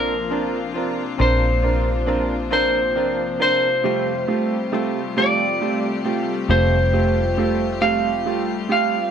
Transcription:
Already playing: A#1 A#2 C3 F3 A#3 C4 D4 F4 A#4
0.30 F3 C4 D4 F4 A#4
0.74 C4 D4 F4 A#4
1.18 A#1 A#2 F3 C4 D4 F4 A#4 C5
1.62 C4 D4 F4 A#4
2.07 F3 C4 D4 F4 A#4
2.51 A#2 F3 C4 D4 F4 A#4 C5
2.95 F3 C4 D4 F4 A#4
3.39 C4 D4 F4 A#4 C5
3.83 F2 C3 G3 A3 C4 F4 G4
4.28 G3 A3 C4 F4 G4
4.72 G3 A3 C4 F4 G4
5.17 F2 C3 G3 A3 C4 F4 G4 D5
5.60 G3 A3 C4 F4 G4
6.05 G3 A3 C4 F4 G4
6.49 F1 F2 C3 G3 A3 C4 F4 G4 C5
6.93 G3 A3 C4 F4 G4
7.37 G3 A3 C4 F4 G4
7.81 F2 C3 G3 A3 C4 F4 G4 F5
8.25 G3 A3 C4 F4 G4
8.69 G3 A3 C4 F4 G4 F5

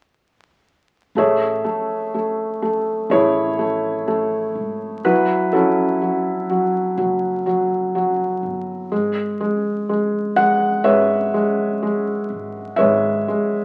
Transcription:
1.15 A1 A3 G#4 C#5 E5
1.65 A3
2.14 A3
2.62 A3
3.10 A1 A3 E4 G#4 C#5
3.59 A3
4.08 A3
4.55 G#1
5.04 F#1 F#3 E4 B4
5.53 F#3 C#4 E4 A4
6.02 F#3
6.50 F#3
6.97 F#1 F#3
7.46 F#3
7.95 F#3
8.43 G1
8.92 G#1 G#3
9.40 G#3
9.89 G#3
10.36 G#3 F#5
10.84 G#1 G#3 B4 C#5 E5
11.34 G#3
11.83 G#3
12.30 G#1
12.76 G#1 G#3 B4 C#5 E5
13.28 G#3

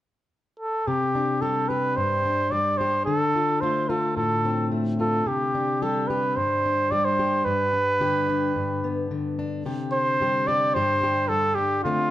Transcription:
0.60 A4
0.87 C3 G4
1.15 D4
1.42 G3 G4 A4
1.68 G4 B4
1.96 G2 C5
2.25 D4
2.51 G3 D5
2.77 G4 C5
3.05 D3 A4
3.35 F4
3.61 A3 F4 C5
3.89 F4 A4
4.16 A2 A4
4.45 C4
4.72 A3
5.00 F4 A4
5.26 C3 G4
5.55 D4
5.82 G3 G4 A4
6.07 G4 B4
6.36 G2 C5
6.66 D4
6.91 G3 D5
7.05 C5
7.19 G4
7.45 G2 B4
7.73 D4
8.00 D3 G4
8.29 D4
8.56 G2
8.84 B3
9.11 D3
9.39 D4
9.66 C3 G4
9.93 C5
10.21 G3 G4
10.47 G4 D5
10.74 G2 G4 C5
11.04 G4
11.28 G3 A4
11.55 D4 G4
11.83 D3 A3 C4 F4

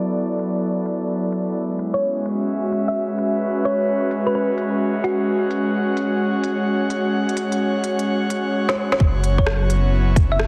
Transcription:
Already playing: F#3 B3 E4 A4 D5
0.39 closed hi-hat
0.86 closed hi-hat
1.32 closed hi-hat
1.55 G#3
1.75 C#4
1.79 closed hi-hat
1.93 F#4 C#5
2.01 E5
2.26 closed hi-hat
2.72 closed hi-hat
2.78 B4
2.88 E5
3.19 closed hi-hat
3.65 C#5, closed hi-hat
4.11 closed hi-hat
4.27 B4
4.35 B4
4.58 closed hi-hat
5.04 F#4, closed hi-hat
5.12 F#5
5.51 closed hi-hat
5.71 C#5
5.97 closed hi-hat
6.44 closed hi-hat
6.90 closed hi-hat
7.29 closed hi-hat
7.37 closed hi-hat
7.52 closed hi-hat
7.84 closed hi-hat
7.99 closed hi-hat
8.30 closed hi-hat
8.69 snare
8.92 snare
9.00 F#1 F#3, kick
9.22 B3, closed hi-hat
9.38 C#5, kick
9.46 E4, cross-stick
9.70 closed hi-hat
10.08 A4
10.16 kick, closed hi-hat
10.32 E5
10.39 cross-stick

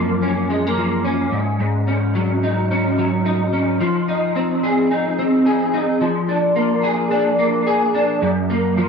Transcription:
Already playing: F#2 F3 A#3
0.22 C#4
0.50 G#3
0.67 A#3
0.77 F3
1.04 C#4
1.32 G#2
1.60 G#2
1.87 C#4
2.15 F#3
2.43 D#4
2.71 C#4
2.98 F#3
3.25 D#4
3.53 C#4
3.81 F3
4.08 D#4
4.36 C4
4.63 G#4
4.91 D#4
5.18 C4
5.46 G#4
5.74 D#4
6.01 F3
6.29 D4
6.56 A#3
6.83 G#4
7.11 D4
7.39 A#3
7.67 G#4
7.95 D4
8.22 F#2
8.50 A#3
8.78 F3

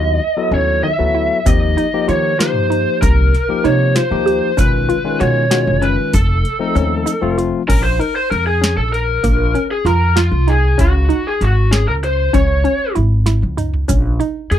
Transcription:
Already playing: D#2 F#3 B3 E4 F#4 D#5
0.37 F#3 B3 E4 A4
0.51 D#2 C#4 C#5
0.83 D#3 E5
0.98 D2 F#3 B3 E4 A4
1.15 E4
1.45 D#2 F3 A#3 C4 D#4 G4 D#5, kick, closed hi-hat, shaker
1.77 D#4, closed hi-hat
1.93 F3 A#3 D#4 G4
2.08 D#3 F4 C#5, closed hi-hat, shaker
2.39 F3 A#3 D#4 F4 G4 C5, snare, closed hi-hat, shaker
2.56 G2
2.70 D#4, closed hi-hat
3.02 C2 A#4, kick, closed hi-hat, shaker
3.35 snare, closed hi-hat
3.49 F3 A#3 D#4 G4
3.64 C3 D#4 C#5, closed hi-hat, shaker
3.95 F4 C5, snare, closed hi-hat, shaker
4.11 D#2 F3 A#3 D#4 G4
4.26 G4, closed hi-hat
4.57 B1 D#3 G#3 C#4 F4 B4, kick, closed hi-hat, shaker
4.89 F4, closed hi-hat
5.04 D#3 G#3 C#4 F4
5.20 B2 F#4 C#5, closed hi-hat, shaker
5.51 D#3 G#3 C#4 F4 F#4, snare, closed hi-hat, shaker
5.67 F#1
5.82 C#4 B4, closed hi-hat
6.13 F1 A4, kick, closed hi-hat, shaker
6.45 closed hi-hat
6.59 F3 A3 C4 D#4
6.75 D#2 C#4, closed hi-hat, shaker
7.06 D#4, closed hi-hat, shaker
7.21 F1 F3 A3 C4 F4
7.38 F4, closed hi-hat
7.68 A#1 C#4 A#4, kick, closed hi-hat, crash
7.84 C5
7.99 D#4 A#4, closed hi-hat
8.16 C5
8.31 F2 A#4, closed hi-hat
8.47 G#4
8.61 C#4, snare, closed hi-hat
8.77 A#1 A4
8.93 A#4, closed hi-hat
9.24 A#1 A#3, kick, closed hi-hat
9.55 C#4, closed hi-hat
9.71 G#4
9.85 F2 F4 A#4, snare, closed hi-hat
10.16 F4, snare, closed hi-hat
10.32 C2
10.47 D#4 G#4, closed hi-hat
10.78 C#2 C#4 F#4, kick, closed hi-hat
11.09 D#4, closed hi-hat
11.27 G#4
11.41 G#1 F#4, closed hi-hat
11.71 C#4 G#4, snare, closed hi-hat
11.88 C#2 A#4
12.04 C5, closed hi-hat
12.33 C#2 C#4 C#5, kick, closed hi-hat
12.64 C#4, closed hi-hat
12.95 G#1 E4, closed hi-hat
13.26 E4, snare, closed hi-hat
13.42 C#2, high tom
13.57 D#4, closed hi-hat, mid tom
13.74 floor tom
13.88 A#1 C#4, kick, closed hi-hat, shaker
14.20 D#4, closed hi-hat
14.51 F2 G#4, closed hi-hat

